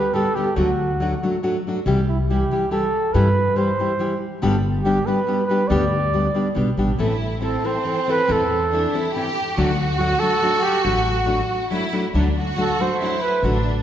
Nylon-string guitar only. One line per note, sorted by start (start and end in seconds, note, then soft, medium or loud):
0.13 0.27 D3 soft
0.13 0.27 G3 medium
0.13 0.27 B3 medium
0.13 0.28 G4 medium
0.36 0.48 D3 medium
0.36 0.49 G3 soft
0.36 0.49 B3 medium
0.36 0.49 G4 medium
0.56 0.69 D3 medium
0.56 0.69 F#3 medium
0.56 0.70 A3 medium
0.56 0.70 D4 medium
0.56 0.70 F#4 medium
1.00 1.13 F#3 medium
1.00 1.13 A3 medium
1.00 1.14 D4 medium
1.00 1.14 F#4 medium
1.23 1.35 F#3 soft
1.23 1.35 A3 medium
1.23 1.35 D4 soft
1.23 1.36 F#4 soft
1.43 1.56 F#3 medium
1.43 1.56 A3 medium
1.43 1.57 D4 medium
1.43 1.57 F#4 medium
1.67 1.78 F#3 soft
1.67 1.78 A3 soft
1.67 1.79 D4 medium
1.67 1.79 F#4 medium
1.86 1.99 C3 medium
1.86 1.99 E3 medium
1.86 2.00 G3 medium
1.86 2.00 E4 medium
1.86 2.00 G4 medium
2.30 2.43 E3 medium
2.30 2.43 G3 medium
2.30 2.43 E4 medium
2.30 2.43 G4 medium
2.51 2.64 E3 soft
2.51 2.64 G3 soft
2.51 2.64 E4 soft
2.51 2.64 G4 soft
2.71 2.85 E3 medium
2.71 2.85 G3 medium
2.71 2.85 E4 medium
2.71 2.85 G4 medium
3.14 3.27 C3 medium
3.14 3.27 E3 medium
3.14 3.28 G3 medium
3.14 3.28 E4 medium
3.14 3.28 G4 medium
3.56 3.69 E3 soft
3.56 3.69 G3 medium
3.56 3.70 E4 soft
3.56 3.70 G4 medium
3.79 3.91 E3 soft
3.79 3.91 G3 soft
3.79 3.92 E4 soft
3.79 3.92 G4 medium
3.99 4.12 E3 medium
3.99 4.12 G3 medium
3.99 4.13 E4 medium
3.99 4.13 G4 medium
4.42 4.55 G2 medium
4.42 4.55 D3 medium
4.42 4.55 G3 medium
4.42 4.55 B3 medium
4.42 4.55 D4 medium
4.42 4.56 G4 medium
4.85 4.98 G3 medium
4.85 4.98 B3 medium
4.85 4.98 D4 medium
4.85 4.98 G4 soft
5.07 5.19 G3 medium
5.07 5.19 B3 medium
5.07 5.19 D4 medium
5.07 5.19 G4 medium
5.27 5.40 G3 medium
5.27 5.41 B3 medium
5.27 5.41 D4 medium
5.27 5.41 G4 medium
5.49 5.61 G3 medium
5.49 5.62 B3 medium
5.49 5.62 D4 soft
5.49 5.62 G4 medium
5.70 5.83 G2 medium
5.70 5.83 D3 medium
5.70 5.83 G3 medium
5.70 5.83 B3 medium
5.70 5.84 D4 medium
5.70 5.84 G4 medium
6.13 6.26 G3 soft
6.13 6.26 B3 soft
6.13 6.26 D4 medium
6.13 6.27 G4 medium
6.34 6.47 G3 medium
6.34 6.47 B3 soft
6.34 6.47 D4 medium
6.34 6.48 G4 medium
6.54 6.68 G3 soft
6.54 6.69 B3 medium
6.54 6.69 D4 medium
6.54 6.69 G4 medium
6.77 6.90 G3 medium
6.77 6.91 B3 medium
6.77 6.91 D4 medium
6.77 6.91 G4 medium
6.99 7.12 A2 medium
6.99 7.12 E3 medium
6.99 7.13 C4 medium
6.99 7.13 E4 medium
6.99 7.13 A4 medium
7.40 7.55 E3 soft
7.40 7.55 C4 soft
7.40 7.56 E4 medium
7.40 7.56 A4 medium
7.63 7.77 E3 soft
7.63 7.77 C4 medium
7.63 7.77 E4 soft
7.63 7.77 A4 soft
7.85 7.98 E3 medium
7.85 7.98 C4 medium
7.85 7.99 E4 medium
7.85 7.99 A4 medium
8.07 8.20 E3 medium
8.07 8.20 C4 soft
8.07 8.21 E4 soft
8.07 8.21 A4 medium
8.27 8.41 A2 medium
8.27 8.41 E3 medium
8.27 8.42 C4 medium
8.27 8.42 E4 medium
8.27 8.42 A4 medium
8.73 8.85 E3 medium
8.73 8.86 C4 medium
8.73 8.86 E4 medium
8.73 8.86 A4 medium
8.94 9.06 E3 soft
8.94 9.06 C4 medium
8.94 9.07 E4 medium
8.94 9.07 A4 medium
9.16 9.28 E3 medium
9.16 9.28 C4 medium
9.16 9.29 E4 medium
9.16 9.29 A4 medium
9.58 9.71 D3 medium
9.58 9.70 F#3 medium
9.58 9.71 A3 medium
9.58 9.71 D4 medium
9.58 9.71 F#4 medium
9.99 10.12 F#3 medium
9.99 10.12 A3 soft
9.99 10.13 D4 soft
9.99 10.13 F#4 medium
10.22 10.34 F#3 soft
10.22 10.34 A3 medium
10.22 10.34 D4 medium
10.22 10.34 F#4 soft
10.42 10.55 F#3 medium
10.42 10.55 A3 medium
10.42 10.55 D4 medium
10.42 10.55 F#4 medium
10.84 10.97 D3 medium
10.84 10.97 F#3 medium
10.84 10.98 A3 medium
10.84 10.98 D4 medium
10.84 10.98 F#4 medium
11.25 11.39 F#3 medium
11.25 11.39 A3 medium
11.25 11.40 D4 medium
11.25 11.40 F#4 medium
11.70 11.84 F#3 medium
11.70 11.84 A3 soft
11.70 11.84 D4 medium
11.70 11.84 F#4 medium
11.92 12.05 F#3 medium
11.92 12.05 A3 medium
11.92 12.05 D4 medium
11.92 12.06 F#4 medium
12.15 12.27 D3 medium
12.15 12.27 F#3 medium
12.15 12.28 A3 medium
12.15 12.28 D4 medium
12.15 12.28 F#4 medium
12.56 12.70 F#3 soft
12.56 12.70 A3 medium
12.56 12.71 D4 medium
12.56 12.71 F#4 medium
12.79 12.92 F#3 soft
12.79 12.92 A3 soft
12.79 12.92 D4 soft
12.79 12.92 F#4 medium
13.01 13.14 F#3 soft
13.01 13.14 A3 soft
13.01 13.14 D4 medium
13.01 13.14 F#4 medium
13.44 13.57 D3 medium
13.44 13.57 F#3 medium
13.44 13.57 A3 medium
13.44 13.57 D4 medium
13.44 13.57 F#4 medium